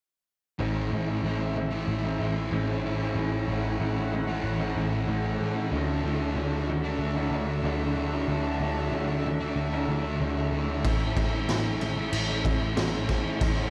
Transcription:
0.59 A1 A2 E3 A3 C#4 E4 A4 E5
0.91 A1 A2 E3 A3 C#4 E4
1.08 A3 C#4 E4
1.23 A1 A2 E3 A3 C#4 E4
1.38 E3 A3
1.55 E3 A3 C#4 E4, muted distorted electric guitar stroke
1.71 E3 A3, muted clean electric guitar stroke
1.88 A1
2.04 E3 A3 C#4 E4
2.18 A1 A2 E3 A3 C#4 E4
2.36 muted clean electric guitar stroke
2.51 A1 A2 E3 A3 C#4 E4
2.67 E3 A3
2.84 A2 E3 A3
3.00 A3 C#4 E4
3.15 A1 A2 E3 A3 C#4 E4 F#5
3.48 A1 A2 E3 A3 C#4 E4
3.64 A3 C#4 E4
3.80 A1 A2 E3 A3 C#4 E4
3.96 E3 A3
4.11 E3 A3 C#4 E4, muted distorted electric guitar stroke
4.27 E3 A3, muted clean electric guitar stroke
4.44 A1
4.59 E3 A3 C#4 E4
4.75 A1 A2 E3 A3 C#4 E4
4.92 muted clean electric guitar stroke
5.07 A1 A2 E3 A3 C#4 E4
5.23 E3 A3
5.39 A1 A2 E3 A3
5.55 A3 C#4 E4
5.71 D2 D3 F#3 A3 D4 E4 F#4 E5
6.03 D2 D3 F#3 A3 D4 E4
6.20 A3 D4 E4
6.35 D2 D3 F#3 A3 D4 E4
6.53 A3 D4
6.67 F#3 A3 D4 E4, muted distorted electric guitar stroke
6.83 D4, muted clean electric guitar stroke
6.88 A3
6.99 D2
7.16 A3 D4 E4
7.31 D2 D3 F#3 A3 D4 E4
7.49 muted clean electric guitar stroke
7.63 D2 D3 F#3 A3 D4 E4
7.79 A3 D4
7.95 D3 A3 D4
8.13 A3 D4 E4
8.28 D2 D3 F#3 A3 D4 E4
8.59 D2 D3 F#3 A3 D4 E4
8.75 A3 D4 E4
8.92 D2 D3 F#3 A3 D4 E4
9.08 A3 D4
9.24 F#3 A3 D4 E4, muted distorted electric guitar stroke
9.40 A3 D4, muted clean electric guitar stroke
9.56 D2
9.73 A3 D4 E4
9.88 D2 D3 F#3 A3 D4 E4
10.05 muted clean electric guitar stroke
10.20 D2 D3 F#3 A3 D4 E4
10.36 A3 D4
10.52 D2 D3 A3 D4
10.68 A3 D4 E4
10.84 A1 A2 E3 A3 C#4 E4, kick, crash
11.16 A1 A2 E3 A3 C#4 E4, kick, crash
11.33 A3 C#4 E4
11.48 A1 A2 E3 A3 C#4 E4, snare, crash
11.65 E3 A3
11.81 E3 A3 C#4 E4, muted distorted electric guitar stroke, crash
11.97 E3 A3, muted clean electric guitar stroke
12.13 A1, crash
12.29 E3 A3 C#4 E4
12.45 A1 A2 E3 A3 C#4 E4, kick, crash
12.61 muted clean electric guitar stroke
12.76 A1 A2 E3 A3 C#4 E4, snare, crash
12.92 E3 A3
13.09 A2 E3 A3, kick, snare, crash
13.25 A3 C#4 E4
13.41 A1 A2 E3 A3 C#4 E4 F#5, kick, crash

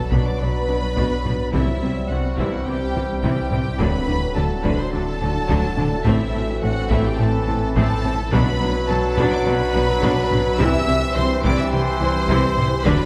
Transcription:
Already playing: B1 B2 F#3 B3 D4 F#4 A4 B4 D5 A5, impact
0.11 B1 B2 F#3 B3 D4 B4 B5, taiko
0.26 D5 D6
0.39 B1 B2 F#3 D4 B4 B5
0.68 B1 B2 F#3 D4
0.96 B1 B2 F#3 B3 D4, taiko
1.25 B1 B2 F#3 D4 B4, taiko low-mid
1.53 C2 G2 C3 E3 G3 C4 E4 C5 E5, taiko
1.81 C2 C3 E3 C4 E4
2.09 C2 C3 E3 C4 E4 F#4 F#5
2.37 C2 C3 E3 E4 E5, taiko
2.53 F#4 F#5
2.65 C2 C3 E3 C4 E4 G4 G5
2.95 C2 C3 E3 E4
3.22 C2 C3 E3 E4 G4 G5, taiko
3.51 C2 C3 E3 C4 E4, taiko low-mid
3.79 D1 D2 A2 D3 F#3 A3 D4 F#4 A4 B4 D5 B5, taiko
4.07 D2 D3 F#3 D4
4.35 D2 D3 F#3 D4 A4 A5
4.64 D2 D3 F#3 D4 B4 B5, taiko
4.78 C5 C6
4.92 D2 D3 F#3 D4 A4 A5
5.21 D2 D3 F#3 D4
5.49 D2 D3 F#3 D4, taiko
5.77 D2 D3 F#3 D4, taiko low-mid
6.05 A1 A2 E3 A3 C4 E4 E5, taiko
6.33 A1 A2 A3 C4 A4
6.61 A1 A2 A3 C4 F#4 A4 F#5
6.90 A1 A2 A3 C4 E4 E5, taiko
7.06 G4 G5
7.18 A1 A2 A3 C4 A4 A5
7.48 A1 A2 A3 C4
7.75 A1 A2 A3 C4 A4 A5, taiko
8.04 A1 A2 A3 C4 A4, taiko low-mid
8.31 B1 F#2 B2 F#3 B3 D4 F#4 B4 D5 B5, taiko
8.61 B1 B2 F#3 D4 B4
8.89 B1 B2 F#3 D4 A4 B4 A5
9.17 B1 B2 F#3 B3 D4 B4 B5, taiko
9.33 D5 D6
9.46 B1 B2 F#3 D4 B4 B5
9.74 B1 B2 F#3 D4
10.02 B1 B2 F#3 B3 D4, taiko
10.31 B1 B2 F#3 D4 B4, taiko low-mid
10.58 C2 G2 C3 E3 C4 E4 G4 C5 E5 E6, taiko
10.87 C2 C3 E3 C4 E4
11.15 C2 C3 E3 C4 E4 C5 C6
11.43 C2 C3 E3 E4 D5 D6, taiko
11.59 E5 E6
11.72 C2 C3 E3 C4 E4 C5 C6
12.00 C2 C3 E3 E4
12.28 C2 C3 E3 E4, taiko
12.56 C2 C3 E3 C4 E4, taiko low-mid
12.85 D1 D2 A2 D3 F#3 D4 F#4 B4 D5 B5, taiko

